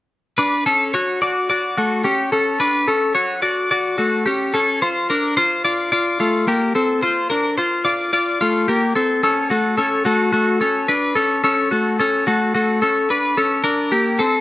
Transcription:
0.38 0.66 D4 medium
0.38 0.66 B4 medium
0.66 0.94 C#4 soft
0.66 0.93 A4 medium
0.94 1.22 F#4 medium
0.94 1.21 C#5 medium
1.22 1.50 F#4 medium
1.22 1.48 D5 medium
1.50 1.76 F#4 medium
1.50 1.77 D5 medium
1.77 2.05 A3 soft
1.77 2.04 F#4 medium
2.04 2.32 C#4 medium
2.04 2.32 G4 medium
2.32 2.60 C#4 soft
2.32 2.60 A4 medium
2.60 2.88 D4 medium
2.60 2.88 B4 medium
2.88 3.16 C#4 soft
2.88 3.15 A4 medium
3.15 3.42 F#4 medium
3.15 3.42 C#5 medium
3.42 3.71 F#4 medium
3.42 3.70 D5 medium
3.71 3.97 F#4 medium
3.71 3.99 D5 medium
3.98 4.26 A3 soft
3.98 4.25 F#4 medium
4.26 4.53 C#4 soft
4.26 4.54 G4 medium
4.54 4.82 C#4 medium
4.54 4.81 A4 medium
4.82 5.10 F4 medium
4.82 5.09 C5 medium
5.10 5.37 D4 soft
5.10 5.37 A#4 medium
5.37 5.64 F4 medium
5.37 5.64 C5 medium
5.65 5.92 F4 medium
5.65 5.91 D5 medium
5.92 6.19 F4 medium
5.92 6.20 D5 medium
6.20 6.47 A3 soft
6.20 6.47 F4 medium
6.48 6.75 A#3 medium
6.48 6.75 G4 medium
6.75 7.03 C4 medium
6.75 7.03 A4 medium
7.03 7.30 F4 medium
7.03 7.30 C5 medium
7.30 7.58 D4 soft
7.30 7.57 A#4 medium
7.58 7.84 F4 medium
7.58 7.84 C5 medium
7.85 8.12 F4 medium
7.85 8.12 D5 medium
8.13 8.40 F4 medium
8.13 8.40 D5 medium
8.41 8.69 A3 soft
8.41 8.68 F4 medium
8.68 8.96 A#3 medium
8.68 8.95 G4 medium
8.96 9.23 C4 medium
8.96 9.22 A4 medium
9.23 9.51 C#4 medium
9.23 9.50 A4 medium
9.50 9.78 A3 soft
9.50 9.77 F#4 medium
9.78 10.06 C#4 medium
9.78 10.05 A4 medium
10.05 10.32 A3 medium
10.05 10.31 F#4 medium
10.33 10.61 A3 medium
10.33 10.60 F#4 medium
10.61 10.89 C#4 medium
10.61 10.88 A4 medium
10.88 11.16 D4 medium
10.88 11.16 B4 medium
11.15 11.43 C#4 soft
11.15 11.43 A4 medium
11.44 11.71 C#4 medium
11.44 11.71 A4 medium
11.71 11.99 A3 soft
11.71 11.98 F#4 medium
12.00 12.27 C#4 medium
12.00 12.26 A4 medium
12.27 12.54 A3 medium
12.27 12.53 F#4 medium
12.55 12.82 A3 medium
12.55 12.81 F#4 medium
12.82 13.09 C#4 soft
12.82 13.09 A4 medium
13.10 13.37 D4 soft
13.10 13.37 B4 medium
13.37 13.64 C#4 medium
13.37 13.64 A4 medium
13.64 13.91 D4 medium
13.64 13.91 A#4 medium
13.92 14.19 A#3 soft
13.92 14.19 G4 medium
14.19 14.41 C4 medium
14.19 14.41 A4 medium

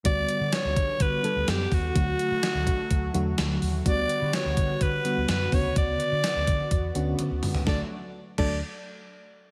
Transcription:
0.04 0.23 D2 loud
0.04 0.68 D3 medium
0.04 1.94 D3 medium
0.04 0.68 G3 medium
0.04 1.94 G3 medium
0.04 0.68 B3 medium
0.04 1.94 B3 medium
0.04 7.63 F#4 medium
0.04 0.68 F#4 medium
0.04 0.55 D5 loud
0.04 kick loud
0.04 closed hi-hat medium
0.29 closed hi-hat medium
0.41 0.50 D3 medium
0.52 1.03 C#5 loud
0.52 snare loud
0.52 closed hi-hat medium
0.65 0.74 D2 medium
0.76 0.94 D3 medium
0.76 kick medium
0.76 closed hi-hat medium
1.00 1.18 D3 loud
1.00 1.51 B4 loud
1.00 kick medium
1.00 closed hi-hat medium
1.23 1.71 D3 medium
1.23 1.71 G3 medium
1.23 1.71 B3 medium
1.23 1.72 A4 medium
1.23 closed hi-hat medium
1.36 1.45 D2 medium
1.48 1.66 F#2 medium
1.48 1.75 G4 medium
1.48 snare loud
1.48 closed hi-hat medium
1.72 1.89 D#2 medium
1.72 3.63 F#4 loud
1.72 kick medium
1.72 open hi-hat medium
1.95 2.13 D2 loud
1.95 2.58 D3 medium
1.95 2.59 F#3 medium
1.95 3.84 F#3 medium
1.95 2.59 A3 medium
1.95 3.84 A3 medium
1.95 2.59 F#4 medium
1.95 kick loud
1.95 closed hi-hat medium
2.19 closed hi-hat medium
2.31 2.40 D3 medium
2.43 snare loud
2.43 closed hi-hat medium
2.55 2.68 D2 medium
2.67 2.85 D3 medium
2.67 kick medium
2.67 closed hi-hat medium
2.91 3.09 D2 medium
2.91 kick medium
2.91 closed hi-hat medium
3.14 3.32 E2 medium
3.14 3.62 D3 medium
3.14 3.62 F#3 medium
3.14 3.62 A3 medium
3.14 3.62 F#4 medium
3.14 closed hi-hat medium
3.38 3.56 D2 medium
3.38 snare loud
3.38 closed hi-hat medium
3.62 3.80 D#2 medium
3.62 open hi-hat medium
3.85 4.04 D2 loud
3.85 4.49 D3 medium
3.85 4.49 G3 medium
3.85 5.51 G3 medium
3.85 7.63 B3 medium
3.85 4.49 B3 medium
3.85 4.49 F#4 medium
3.85 4.36 D5 loud
3.85 kick loud
3.85 closed hi-hat medium
4.09 closed hi-hat medium
4.22 4.31 D3 medium
4.33 4.84 C#5 loud
4.33 snare loud
4.33 closed hi-hat medium
4.45 4.54 D2 medium
4.57 4.75 D3 medium
4.57 kick medium
4.57 closed hi-hat medium
4.81 4.99 D3 loud
4.81 5.29 B4 loud
4.81 kick medium
4.81 closed hi-hat medium
5.04 5.51 D3 medium
5.04 5.52 G3 medium
5.04 5.51 B3 medium
5.04 5.52 F#4 medium
5.04 closed hi-hat medium
5.17 5.26 D2 medium
5.28 5.47 F#2 medium
5.28 5.55 B4 medium
5.28 snare loud
5.28 closed hi-hat medium
5.52 5.70 D2 loud
5.52 6.29 C#3 medium
5.52 6.29 D3 medium
5.52 6.29 B3 medium
5.52 6.29 F#4 medium
5.52 5.77 C#5 loud
5.52 kick medium
5.52 open hi-hat medium
5.76 5.94 D2 loud
5.76 7.16 D5 loud
5.76 kick loud
5.76 closed hi-hat medium
6.00 closed hi-hat medium
6.12 6.21 D3 medium
6.24 snare loud
6.24 closed hi-hat medium
6.24 tambourine medium
6.36 6.45 D2 medium
6.47 6.66 D3 loud
6.47 kick loud
6.47 closed hi-hat medium
6.71 6.89 E2 medium
6.71 kick medium
6.71 closed hi-hat medium
6.95 7.13 D2 loud
6.95 7.42 D3 medium
6.95 7.43 B3 medium
6.95 7.43 C#4 medium
6.95 7.43 F#4 loud
6.95 closed hi-hat medium
7.19 closed hi-hat medium
7.19 high tom medium
7.31 7.40 D2 medium
7.42 7.61 D3 medium
7.42 mid tom medium
7.42 open hi-hat medium
7.55 floor tom medium
7.66 7.80 D2 medium
7.66 7.89 D3 medium
7.66 7.89 F#3 medium
7.66 7.80 F#3 medium
7.66 7.89 A3 medium
7.66 7.80 A3 medium
7.66 7.80 D4 medium
7.66 7.89 F#4 medium
7.66 7.80 A4 medium
7.66 7.81 D5 medium
7.66 kick loud
7.66 snare medium
8.38 8.60 D2 loud
8.38 8.60 F#3 medium
8.38 8.60 A3 medium
8.38 8.60 D4 medium
8.38 8.60 A4 medium
8.38 8.60 D5 medium
8.38 kick loud
8.38 crash medium

